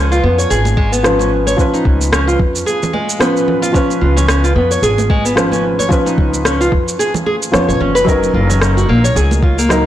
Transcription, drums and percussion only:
0.12 shaker
0.39 shaker
0.51 shaker
0.65 muted conga, high conga, shaker
0.77 kick
0.93 shaker
1.04 cross-stick, shaker
1.19 high conga, shaker
1.47 high conga, shaker
1.58 kick, shaker
1.74 muted conga, shaker
1.85 kick, high conga
2.01 muted conga, shaker
2.13 cross-stick, shaker
2.29 shaker
2.39 kick
2.56 shaker
2.66 high conga, shaker
2.83 muted conga, low conga, shaker
2.94 high conga
3.10 shaker
3.21 cross-stick, shaker
3.37 shaker
3.48 low conga
3.63 muted conga, shaker
3.75 kick, shaker
3.90 muted conga, shaker
4.17 muted conga, low conga, shaker
4.28 cross-stick, shaker
4.44 shaker
4.72 shaker
4.83 shaker
4.98 muted conga, high conga, shaker
5.10 kick
5.26 shaker
5.37 cross-stick, shaker
5.52 high conga, shaker
5.79 high conga, shaker
5.91 kick, shaker
6.07 muted conga, shaker
6.18 kick, high conga
6.33 muted conga, shaker
6.45 cross-stick, shaker
6.61 shaker
6.72 kick
6.88 shaker
7.00 high conga, shaker
7.14 muted conga, low conga, shaker
7.27 high conga
7.43 shaker
7.53 cross-stick, shaker
7.70 shaker
7.81 low conga
7.96 muted conga, shaker
8.07 kick, shaker
8.23 muted conga, shaker
8.50 muted conga, low conga, shaker
8.61 cross-stick, shaker
8.78 shaker
9.05 shaker
9.17 shaker
9.31 muted conga, high conga, shaker
9.43 kick
9.59 shaker
9.70 cross-stick, shaker

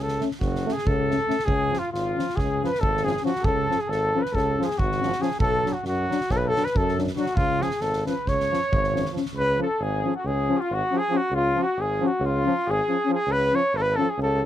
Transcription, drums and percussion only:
0.08 snare
0.21 snare
0.31 snare
0.41 kick, snare
0.55 snare
0.69 snare
0.78 snare
0.87 kick
1.11 snare
1.30 snare
1.39 snare
1.48 kick
1.73 snare
1.94 snare
2.19 snare
2.29 snare
2.37 kick, snare
2.64 snare
2.75 snare
2.83 kick
2.97 snare
3.07 snare
3.17 snare
3.26 snare
3.36 snare
3.44 kick
3.71 snare
3.92 snare
4.25 snare
4.35 kick, snare
4.62 snare
4.71 snare
4.79 kick
4.92 snare
5.03 snare
5.12 snare
5.22 snare
5.31 snare
5.40 kick
5.66 snare
5.85 snare
6.11 snare
6.21 snare
6.30 kick, snare
6.56 snare
6.66 snare
6.76 kick
6.88 snare
6.98 snare
7.07 snare
7.16 snare
7.26 snare
7.37 kick
7.61 snare
7.71 snare
7.81 snare
7.93 snare
8.06 snare
8.27 kick, snare
8.40 snare
8.53 snare
8.73 kick
8.84 snare
8.96 snare
9.06 snare
9.16 snare
9.25 snare

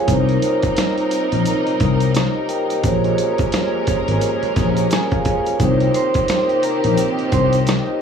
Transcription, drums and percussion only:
0.08 kick, closed hi-hat, shaker
0.29 closed hi-hat
0.42 closed hi-hat, shaker
0.62 kick, closed hi-hat, shaker
0.77 cross-stick, snare, closed hi-hat, shaker
0.98 closed hi-hat
1.11 closed hi-hat, shaker
1.32 closed hi-hat
1.45 closed hi-hat, shaker
1.67 closed hi-hat
1.80 kick, closed hi-hat, shaker
2.00 closed hi-hat, shaker
2.15 cross-stick, snare, closed hi-hat, shaker
2.49 closed hi-hat, shaker
2.70 closed hi-hat, shaker
2.84 kick, closed hi-hat, shaker
3.04 closed hi-hat
3.18 closed hi-hat, shaker
3.38 kick, closed hi-hat, shaker
3.52 cross-stick, snare, closed hi-hat, shaker
3.87 kick, closed hi-hat, shaker
4.08 closed hi-hat
4.21 closed hi-hat, shaker
4.43 closed hi-hat
4.56 kick, snare, closed hi-hat, shaker
4.77 closed hi-hat, shaker
4.91 cross-stick, snare, closed hi-hat, shaker
5.11 kick, closed hi-hat
5.25 kick, closed hi-hat, shaker
5.46 closed hi-hat, shaker
5.60 kick, closed hi-hat, shaker
5.80 closed hi-hat
5.94 closed hi-hat, shaker
6.14 kick, closed hi-hat, shaker
6.28 cross-stick, snare, closed hi-hat, shaker
6.49 closed hi-hat
6.63 closed hi-hat, shaker
6.84 closed hi-hat
6.97 closed hi-hat, shaker
7.19 closed hi-hat
7.32 kick, closed hi-hat, shaker
7.53 closed hi-hat, shaker
7.67 cross-stick, snare, closed hi-hat, shaker

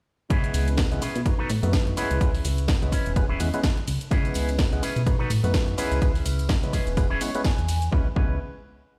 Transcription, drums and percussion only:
0.30 kick, closed hi-hat, ride, cabasa
0.44 closed hi-hat, cabasa
0.54 open hi-hat, ride, cabasa
0.68 closed hi-hat, cabasa
0.78 kick, snare, closed hi-hat, ride, cabasa
0.92 closed hi-hat, cabasa
1.02 open hi-hat, ride, cabasa
1.16 closed hi-hat, cabasa
1.26 kick, closed hi-hat, ride, cabasa
1.50 open hi-hat, ride, cabasa
1.63 closed hi-hat, cabasa
1.73 kick, snare, closed hi-hat, ride, cabasa
1.87 closed hi-hat
1.97 open hi-hat, ride, cabasa
2.11 closed hi-hat, cabasa
2.21 kick, closed hi-hat, ride, cabasa
2.35 open hi-hat, cabasa
2.45 open hi-hat, ride, cabasa
2.58 closed hi-hat, cabasa
2.68 kick, snare, closed hi-hat, ride, cabasa
2.82 closed hi-hat, cabasa
2.92 kick, open hi-hat, ride, cabasa
3.06 closed hi-hat, cabasa
3.16 kick, closed hi-hat, ride, cabasa
3.40 open hi-hat, ride, cabasa
3.54 closed hi-hat, cabasa
3.63 kick, snare, closed hi-hat, ride, cabasa
3.77 closed hi-hat
3.88 open hi-hat, ride, cabasa
4.01 closed hi-hat, cabasa
4.11 kick, closed hi-hat, ride, tambourine, cabasa
4.25 closed hi-hat, tambourine, cabasa
4.34 open hi-hat, ride, tambourine, cabasa
4.49 closed hi-hat, tambourine, cabasa
4.59 kick, snare, closed hi-hat, ride, tambourine, cabasa
4.73 closed hi-hat, tambourine, cabasa
4.83 open hi-hat, ride, tambourine, cabasa
4.96 closed hi-hat, tambourine, cabasa
5.07 kick, closed hi-hat, ride, tambourine, cabasa
5.20 tambourine
5.30 open hi-hat, ride, tambourine, cabasa
5.44 closed hi-hat, tambourine, cabasa
5.54 kick, snare, closed hi-hat, ride, tambourine, cabasa
5.68 closed hi-hat, tambourine
5.78 open hi-hat, ride, tambourine, cabasa
5.92 closed hi-hat, tambourine, cabasa
6.02 kick, closed hi-hat, ride, tambourine, cabasa
6.15 open hi-hat, tambourine, cabasa
6.26 open hi-hat, ride, tambourine, cabasa
6.39 closed hi-hat, tambourine, cabasa
6.49 kick, snare, closed hi-hat, ride, cabasa
6.63 closed hi-hat, tambourine, cabasa
6.73 kick, open hi-hat, ride, tambourine, cabasa
6.87 closed hi-hat, tambourine, cabasa
6.97 kick, closed hi-hat, ride, tambourine, cabasa
7.11 tambourine
7.21 open hi-hat, ride, tambourine, cabasa
7.35 closed hi-hat, tambourine, cabasa
7.44 kick, snare, closed hi-hat, ride, tambourine, cabasa
7.58 closed hi-hat, tambourine, cabasa
7.69 open hi-hat, ride, tambourine, cabasa
7.82 closed hi-hat, tambourine, cabasa
7.93 kick
8.16 kick

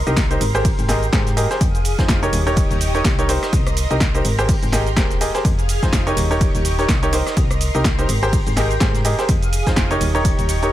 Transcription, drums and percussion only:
0.07 closed hi-hat, shaker
0.17 kick, snare, closed hi-hat, shaker
0.31 closed hi-hat, shaker
0.41 closed hi-hat, open hi-hat, ride, shaker
0.55 cross-stick, closed hi-hat, shaker
0.65 kick, closed hi-hat, open hi-hat, shaker
0.79 closed hi-hat, shaker
0.89 snare, closed hi-hat, open hi-hat, ride, shaker
1.03 closed hi-hat, shaker
1.13 kick, snare, closed hi-hat, shaker
1.26 snare, closed hi-hat, shaker
1.37 closed hi-hat, open hi-hat, ride, shaker
1.51 snare, closed hi-hat, shaker
1.61 kick, closed hi-hat, shaker
1.75 closed hi-hat, shaker
1.85 closed hi-hat, open hi-hat, ride, shaker
1.99 kick, snare, closed hi-hat, shaker
2.08 kick, snare, closed hi-hat, shaker
2.23 closed hi-hat, shaker
2.33 closed hi-hat, open hi-hat, ride, shaker
2.47 closed hi-hat, shaker
2.56 kick, closed hi-hat, shaker
2.71 closed hi-hat, shaker
2.80 closed hi-hat, open hi-hat, ride, shaker
2.95 closed hi-hat, shaker
3.04 kick, snare, closed hi-hat, shaker
3.19 closed hi-hat, shaker
3.29 closed hi-hat, open hi-hat, ride, shaker
3.43 cross-stick, snare, closed hi-hat, shaker
3.53 kick, closed hi-hat, shaker
3.67 cross-stick, closed hi-hat, shaker
3.77 closed hi-hat, open hi-hat, ride, shaker
3.91 closed hi-hat, shaker
4.00 kick, snare, closed hi-hat, shaker
4.15 closed hi-hat, shaker
4.25 closed hi-hat, open hi-hat, ride, shaker
4.39 cross-stick, closed hi-hat, shaker
4.49 kick, closed hi-hat, open hi-hat, shaker
4.63 closed hi-hat, shaker
4.72 snare, closed hi-hat, open hi-hat, ride, shaker
4.87 closed hi-hat, shaker
4.96 kick, snare, closed hi-hat, shaker
5.10 snare, closed hi-hat, shaker
5.21 closed hi-hat, open hi-hat, ride, shaker
5.34 snare, closed hi-hat, shaker
5.45 kick, closed hi-hat, shaker
5.59 closed hi-hat, shaker
5.68 closed hi-hat, open hi-hat, ride, shaker
5.82 kick, snare, closed hi-hat, shaker
5.93 kick, snare, closed hi-hat, shaker
6.07 closed hi-hat, shaker
6.17 closed hi-hat, open hi-hat, ride, shaker
6.31 closed hi-hat, shaker
6.41 kick, closed hi-hat, shaker
6.55 closed hi-hat, shaker
6.65 closed hi-hat, open hi-hat, ride, shaker
6.79 closed hi-hat, shaker
6.88 kick, snare, closed hi-hat, shaker
7.03 closed hi-hat, shaker
7.12 closed hi-hat, open hi-hat, ride, shaker
7.27 cross-stick, snare, closed hi-hat, shaker
7.36 kick, closed hi-hat, shaker
7.51 cross-stick, closed hi-hat, shaker
7.61 closed hi-hat, open hi-hat, ride, shaker
7.75 closed hi-hat, shaker
7.84 kick, snare, closed hi-hat, shaker
7.99 closed hi-hat, shaker
8.09 closed hi-hat, open hi-hat, ride, shaker
8.23 cross-stick, closed hi-hat, shaker
8.32 kick, closed hi-hat, open hi-hat, shaker
8.47 closed hi-hat, shaker
8.56 snare, closed hi-hat, open hi-hat, ride, shaker
8.71 closed hi-hat, shaker
8.80 kick, snare, closed hi-hat, shaker
8.94 snare, closed hi-hat, shaker
9.05 closed hi-hat, open hi-hat, ride, shaker
9.19 snare, closed hi-hat, shaker
9.28 kick, closed hi-hat, shaker
9.43 closed hi-hat, shaker
9.52 closed hi-hat, open hi-hat, ride, shaker
9.67 kick, snare, closed hi-hat, shaker
9.76 kick, snare, closed hi-hat, shaker
9.91 closed hi-hat, shaker
10.01 closed hi-hat, open hi-hat, ride, shaker
10.15 closed hi-hat, shaker
10.25 kick, closed hi-hat, shaker
10.39 closed hi-hat, shaker
10.49 closed hi-hat, open hi-hat, ride, shaker
10.62 closed hi-hat, shaker

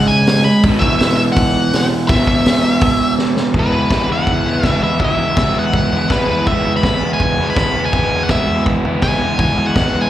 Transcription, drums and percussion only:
0.27 snare, open hi-hat
0.64 kick, open hi-hat
0.82 kick
1.00 snare, open hi-hat
1.37 kick, open hi-hat
1.73 snare, open hi-hat
2.09 kick, open hi-hat
2.27 kick
2.46 snare, open hi-hat
2.81 kick, open hi-hat
3.18 snare
3.37 snare
3.54 kick, floor tom
3.73 floor tom
3.91 kick, snare, floor tom
4.09 floor tom
4.27 kick, floor tom
4.46 floor tom
4.63 kick, snare, floor tom
4.82 floor tom
4.99 kick, floor tom
5.18 floor tom
5.37 kick, snare, floor tom
5.55 floor tom
5.73 kick, floor tom
5.92 floor tom
6.10 kick, snare, floor tom
6.29 floor tom
6.46 kick, floor tom
6.65 floor tom
6.83 kick, snare, floor tom
7.02 floor tom
7.20 kick, floor tom
7.38 floor tom
7.56 kick, snare, floor tom
7.75 floor tom
7.93 kick, floor tom
8.11 floor tom
8.29 kick, snare, floor tom
8.47 floor tom
8.66 kick, floor tom
8.85 floor tom
9.02 kick, snare, floor tom
9.21 floor tom
9.39 kick, floor tom
9.58 floor tom
9.75 kick, snare, floor tom
9.95 floor tom

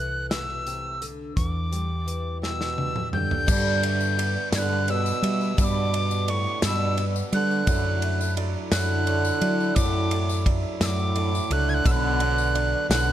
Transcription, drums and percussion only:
0.31 snare, closed hi-hat
0.67 closed hi-hat
1.02 closed hi-hat
1.37 kick, closed hi-hat
1.73 closed hi-hat
2.08 closed hi-hat
2.43 snare
2.61 snare
2.78 high tom
2.96 mid tom
3.13 mid tom
3.31 floor tom
3.48 kick, crash, tambourine
3.83 ride
4.00 tambourine
4.19 ride
4.53 snare, ride, tambourine
4.88 ride, tambourine
5.06 tambourine
5.23 ride
5.41 tambourine
5.58 kick, ride, tambourine
5.94 ride
6.11 tambourine
6.28 ride
6.62 snare, ride, tambourine
6.98 ride, tambourine
7.16 tambourine
7.33 ride, tambourine
7.51 tambourine
7.67 kick, ride, tambourine
8.02 ride
8.21 tambourine
8.37 ride
8.72 snare, ride, tambourine
9.07 ride, tambourine
9.25 tambourine
9.41 ride, tambourine
9.60 tambourine
9.76 kick, ride, tambourine
10.11 ride
10.29 tambourine
10.46 kick, ride
10.81 snare, ride, tambourine
10.99 tambourine
11.16 ride
11.35 tambourine
11.51 ride
11.69 tambourine
11.86 kick, ride, tambourine
12.20 ride
12.38 tambourine
12.55 ride
12.91 snare, ride, tambourine

